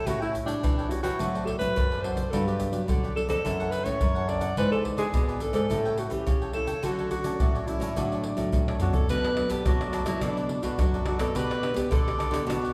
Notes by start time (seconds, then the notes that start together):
0.06 A2 G3 C#4 E4 F#4 A4 C#5 G5, pandeiro, shaker, surdo
0.20 E4 A4 C#5 G5, pandeiro, shaker
0.33 muted cavaquinho stroke, pandeiro, shaker, surdo
0.46 G3 D4 E4 A4 C#5 G5, pandeiro, shaker
0.62 E3 E4 A4 C#5 G5, pandeiro, shaker, surdo
0.78 A4 C#5 G5, pandeiro, shaker
0.89 G3 C#4 E4 F#4, pandeiro, shaker
1.03 E3 F#4 A4 C#5 G5, pandeiro, shaker, surdo
1.19 A2 F#3 C4 D4 F#4 A4 C5 D5, pandeiro, shaker, surdo
1.35 A4 C5 D5, pandeiro, shaker
1.45 A4, muted cavaquinho stroke, pandeiro, surdo
1.59 A2 F#3 C4 D4 B4, pandeiro, shaker, surdo
1.76 F#2 A2, pandeiro, shaker, surdo
1.91 A4 C5 D5, pandeiro, shaker
2.01 F#3 C4 D4 F#4 A4 C5 D5, pandeiro
2.16 A4 C5 D5, pandeiro, shaker, surdo
2.31 G2 F#3 B3 D4 F#4 G4 A4 B4 D5, pandeiro, shaker, surdo
2.45 G4 B4 D5, pandeiro, shaker
2.49 G4
2.60 muted cavaquinho stroke, pandeiro, shaker, surdo
2.71 F#3 B3 D4 G4 B4 D5, pandeiro, shaker
2.88 D3 F#4 G4 B4 D5, pandeiro, shaker, surdo
3.03 G4 B4 D5, pandeiro, shaker
3.15 F#3 B3 D4 A4, pandeiro
3.28 F2 G4 A4 B4 D5, pandeiro, shaker, surdo
3.43 F#2 E3 A3 C#4 D4 A4 C#5 F#5, pandeiro, shaker, surdo
3.60 A4 C#5 F#5, pandeiro, shaker
3.71 B4, muted cavaquinho stroke, pandeiro, shaker
3.84 A2 E3 A3 C#4 C#5, pandeiro, shaker, surdo
4.00 F#2, pandeiro, shaker, surdo
4.15 A4 C#5 F#5, pandeiro, shaker
4.27 E3 A3 C#4 D4 A4 C#5 D5 F#5, pandeiro
4.40 A4 C#5 F#5, pandeiro, shaker, surdo
4.56 G#2 E3 B3 D4 E4 G#4 B4 D5, pandeiro, shaker, surdo
4.72 G#4 A4 B4 D5, pandeiro, shaker
4.85 muted cavaquinho stroke, pandeiro, surdo
4.97 E3 B3 D4 G#4 B4 D5, pandeiro, shaker
5.13 G#2 B2 E4 G#4 B4 D5, pandeiro, shaker, surdo
5.28 G#4 B4 D5, pandeiro, shaker
5.40 E3 B3 D4 A4, pandeiro, shaker
5.53 G#2 G#4 A4 B4 D5, pandeiro, shaker, surdo
5.70 A2 G3 C#4 E4 A4 C#5 G5, pandeiro, shaker, surdo
5.85 A4 C#5 G5, pandeiro, shaker
5.98 F#4, muted cavaquinho stroke, pandeiro, shaker
6.10 E3 G3 C#4 E4 G4, pandeiro, shaker, surdo
6.27 C#3 E3, pandeiro, shaker, surdo
6.42 A4 C#5 G5, pandeiro, shaker
6.53 G3 C#4 E4 A4 C#5 G5, pandeiro
6.67 A4 C#5 G5, pandeiro, shaker, surdo
6.83 D3 F#3 A3 C#4 F#4 A4 C#5 D5, pandeiro, shaker, surdo
6.98 A4 C#5 D5, pandeiro, shaker
7.11 F#4, muted cavaquinho stroke, pandeiro, shaker, surdo
7.24 F#3 A3 C#4 A4 C#5 D5, pandeiro, shaker
7.40 A2 F#4 A4 C#5 D5, pandeiro, shaker, surdo
7.55 A4 C#5 D5, pandeiro, shaker
7.67 F#3 A3 C#4 E4, pandeiro, shaker
7.80 A2 A4 C#5 D5, pandeiro, shaker, surdo
7.96 A2 D3 F#3 A3 D4 F#4 A4 C#5 D5, pandeiro, shaker, surdo
8.12 A4 C#5 D5, pandeiro, shaker
8.24 muted cavaquinho stroke, pandeiro
8.37 A2 F#3 A3, pandeiro, shaker, surdo
8.52 A2, pandeiro, shaker, surdo
8.68 A4 C#5 D5, pandeiro, tamborim, shaker
8.80 B2 F#3 A3 C#4 F#4 A4 C#5 D5, surdo, pandeiro, shaker
8.93 A4 C#5 D5, pandeiro, shaker, surdo
9.09 B2 F#3 A3 D4 A4 B4 D5, pandeiro, shaker, surdo
9.24 A4 B4 D5, pandeiro, tamborim, shaker
9.36 F#3 A3 D4, muted cavaquinho stroke, pandeiro, tamborim
9.50 B3 G4 A4 B4 D5, pandeiro, shaker, surdo
9.65 F#2 F#3 D4 F#4 A4 B4 D5, pandeiro, tamborim, shaker, surdo
9.80 F#3 A3 D4, pandeiro, tamborim, shaker
9.93 D4 A4 B4 D5, pandeiro, tamborim, shaker
10.06 F#3 E4 A4 B4 D5, pandeiro, tamborim, shaker, surdo
10.21 B2 F#3 A3 D4 A4 B4 D5, pandeiro, tamborim, shaker, surdo
10.37 A4 B4 D5, pandeiro, shaker
10.49 muted cavaquinho stroke, pandeiro
10.63 B2 F#4 A4 B4 D5, pandeiro, shaker, surdo
10.78 F#2 F#3 A3 D4, pandeiro, tamborim, shaker, surdo
10.94 A4 B4 D5, pandeiro, shaker, surdo
11.05 F#3 A3 D4 F#4 A4 B4 D5, pandeiro, tamborim
11.19 B2 A4 B4 D5, pandeiro, tamborim, shaker, surdo
11.35 B2 B3 D4 G4 B4 D5, pandeiro, shaker, surdo
11.50 G4 B4 D5, pandeiro, tamborim, shaker
11.63 B3 D4 G4, muted cavaquinho stroke, pandeiro, tamborim
11.74 B3 G4 B4 D5, pandeiro, shaker, surdo
11.91 B2 D3 D4 G4 A4 B4 D5, pandeiro, tamborim, shaker, surdo
12.07 B3 D4 G4, pandeiro, tamborim, shaker
12.18 D4 G4 B4 D5, pandeiro, tamborim, shaker
12.31 D3 B3 D4 G4 B4 D5, pandeiro, tamborim, shaker, surdo
12.47 B2 B3 D4 F#4 G4 B4 D5, pandeiro, tamborim, shaker, surdo
12.62 G4 B4 D5, pandeiro, shaker